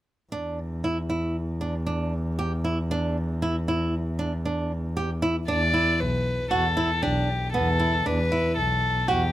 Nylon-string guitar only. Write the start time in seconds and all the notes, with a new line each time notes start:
0.32 D4
0.84 E4
1.09 E4
1.61 D4
1.86 D4
2.39 G4
2.64 E4
2.91 D4
3.42 E4
3.68 E4
4.19 D4
4.45 D4
4.97 G4
5.22 E4
5.48 D4
5.74 E4
6.51 F#4
6.77 E4
7.03 D4
7.54 B3
7.79 E4
8.06 D4
8.32 E4
9.08 F#4